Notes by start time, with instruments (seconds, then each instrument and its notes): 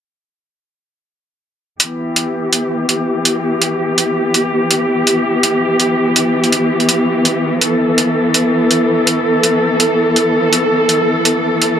1.80 cello section E3 B3 G4, closed hi-hat
2.16 closed hi-hat
2.53 closed hi-hat
2.89 closed hi-hat
3.25 closed hi-hat
3.62 closed hi-hat
3.98 closed hi-hat
4.34 closed hi-hat
4.71 closed hi-hat
5.07 closed hi-hat
5.43 closed hi-hat
5.80 closed hi-hat
6.16 closed hi-hat
6.44 closed hi-hat
6.52 closed hi-hat
6.80 closed hi-hat
6.89 closed hi-hat
7.25 closed hi-hat
7.61 cello section A4, closed hi-hat
7.98 closed hi-hat
8.34 closed hi-hat
8.71 closed hi-hat
9.07 closed hi-hat
9.43 closed hi-hat
9.80 closed hi-hat
10.16 closed hi-hat
10.53 closed hi-hat
10.89 closed hi-hat
11.25 closed hi-hat
11.62 closed hi-hat